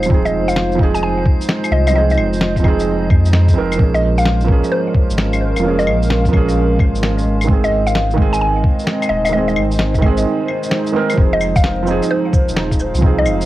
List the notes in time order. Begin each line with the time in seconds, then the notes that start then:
Already playing: D#1 F3 G#3 C4 D#4 F4 G#4 C5 F5
0.03 F3, claves, shaker
0.09 C4 D#4, kick
0.14 G#4
0.25 D#5, shaker
0.33 F1
0.48 F5, shaker
0.56 snare
0.72 F3, shaker
0.78 C4 D#4, kick
0.83 G#4
0.94 G#5, shaker
1.03 G#5
1.26 D#5, kick
1.41 shaker
1.49 snare
1.64 claves, shaker
1.71 C2 D#5
1.87 F3 D#5, claves, shaker
1.93 C4 D#4 D#5
1.98 G#4
2.10 D#5, shaker
2.17 F1, claves
2.33 shaker
2.41 snare
2.56 F3, kick, shaker
2.62 C4 D#4, kick, claves
2.68 G#4
2.79 shaker
3.10 F2, kick, claves
3.25 shaker
3.33 snare
3.48 kick, shaker
3.54 F1 F3 C4 D#4
3.58 A#4
3.72 F3, claves, shaker
3.78 A#1 A#3 C#4, kick
3.83 G#4
3.94 D#5, shaker
3.99 C#4
4.18 A#4 F5, shaker
4.25 snare
4.41 F3, shaker
4.45 A#3 F5, kick
4.50 C#4 G#4
4.64 shaker
4.72 C5
4.94 kick
5.10 G#1, shaker
5.18 snare
5.33 claves, shaker
5.55 F1, claves, shaker
5.60 F3 A#3
5.65 C#4 G#4
5.79 D#5, shaker
5.86 A#1, claves
6.02 shaker
6.10 snare
6.25 F3, kick, shaker
6.31 A#3 C#4, kick, claves
6.37 G#4
6.49 shaker
6.79 G#1, kick, claves
6.95 shaker
7.03 snare
7.18 shaker
7.25 G#1
7.41 D#3, claves, shaker
7.47 G#3 C4, kick
7.52 C4 G#4
7.64 D#5, shaker
7.71 G#1 D#5
7.83 D#4 F5
7.87 shaker
7.95 snare
8.11 D#3, shaker
8.16 G#3 C4 C5, kick
8.22 G#4
8.33 G#5, shaker
8.41 G#5
8.64 kick
8.79 shaker
8.87 snare
9.02 claves, shaker
9.09 D#1 D#5
9.25 D#5, claves, shaker
9.29 D#3 G#3 D#5
9.35 C4 G#4
9.48 D#5, shaker
9.56 G#1, claves
9.71 shaker
9.79 snare
9.94 D#3, kick, shaker
10.01 G#3 C4, kick, claves
10.06 G#4
10.17 shaker
10.48 claves
10.63 shaker
10.71 snare
10.87 shaker
10.92 D#3 G#3 C4 A#4
11.10 F3, claves, shaker
11.16 F1 C4 D#4, kick
11.21 G#4
11.33 D#5
11.41 cabasa, claves
11.56 F4 F5, kick, shaker
11.64 snare
11.83 F3 C4
11.87 D#4, cabasa
11.91 G#4
12.02 F5, shaker
12.11 C5
12.33 kick, cabasa
12.48 D#1, shaker
12.56 snare
12.71 kick, shaker
12.79 cabasa
12.94 C2, shaker
12.98 F3 C4, kick
13.04 D#4 G#4
13.18 D#5
13.25 F1, cabasa, claves
13.41 shaker